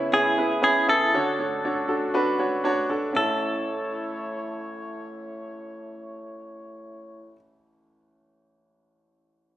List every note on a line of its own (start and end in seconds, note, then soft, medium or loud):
0.00 1.11 C#3 medium
0.00 1.15 C#3 medium
0.00 1.11 B3 medium
0.00 0.13 C#4 medium
0.00 0.13 E4 medium
0.00 1.11 E4 medium
0.00 0.39 B4 medium
0.00 1.15 C#5 medium
0.00 1.15 E5 medium
0.13 0.33 C#4 medium
0.13 0.33 E4 medium
0.13 0.63 G#4 medium
0.13 0.33 G#4 medium
0.38 0.58 C#4 medium
0.38 0.58 E4 medium
0.38 0.58 B4 medium
0.62 0.82 C#4 medium
0.62 0.83 E4 medium
0.62 0.89 G#4 medium
0.62 0.83 B4 medium
0.88 1.08 C#4 medium
0.88 1.08 E4 medium
0.88 2.61 A4 medium
0.88 1.08 B4 medium
1.13 2.98 D3 medium
1.13 1.86 D3 soft
1.13 2.98 C#4 medium
1.13 1.34 D4 medium
1.13 2.98 F#4 medium
1.13 1.34 F#4 medium
1.13 1.34 C#5 medium
1.39 1.59 D4 medium
1.39 1.59 F#4 medium
1.39 1.59 C#5 medium
1.65 1.84 D4 medium
1.65 1.84 F#4 medium
1.65 1.84 C#5 medium
1.88 2.09 D4 medium
1.88 2.09 F#4 medium
1.88 2.09 A4 medium
2.14 2.34 D4 medium
2.14 2.34 F#4 medium
2.14 2.34 B4 loud
2.39 2.59 D4 medium
2.39 2.59 F#4 medium
2.39 2.60 C#5 medium
2.64 2.84 D4 medium
2.64 2.85 F#4 medium
2.64 2.85 C#5 medium
2.64 2.88 A5 medium
2.89 3.10 D4 medium
2.89 3.10 F#4 medium
2.89 3.10 A4 medium
2.89 3.13 F#5 medium
3.13 7.34 A1 medium
3.13 7.35 A3 medium
3.13 7.32 C#4 medium
3.13 7.35 E4 medium
3.13 7.36 A4 medium
3.13 7.35 C#5 medium
3.17 7.37 A4 medium